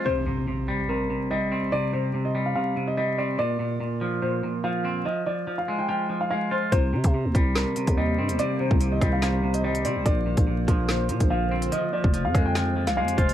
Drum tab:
HH |----------------|----------------|----------------|----------------|
SD |----------------|----------------|----------------|----------------|
BD |----------------|----------------|----------------|----------------|

HH |x--x--x---xx---x|x---x-x-x--x-xx-|x--x--x---xx---x|x---x-x-x--x-xxx|
SD |--------o-------|------r-o-------|--------o-------|------r-o--o----|
BD |o--o--o----o----|---o--o---------|o--o--o----o----|---o--o-------o-|